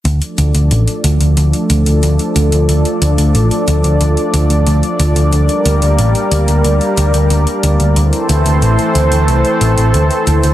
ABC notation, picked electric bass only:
X:1
M:4/4
L:1/16
Q:1/4=91
K:Dm
V:1 name="Picked electric bass" clef=bass
D,, z D,, D,, A,,, z D,, D,, D,, z D,, D,, D,, z D,, D,, | D,, z D,, D,, A,,, z D,, D,, D,, z D,, D,, D,, z D,, D,, | D,, z D,, D,, A,,, z D,, D,, D,, z D,, D,, D,, z D,, D,, | D,, z D,, D,, A,,, z D,, D,, C,, z A,,, A,,, D,, z D,, D,, |]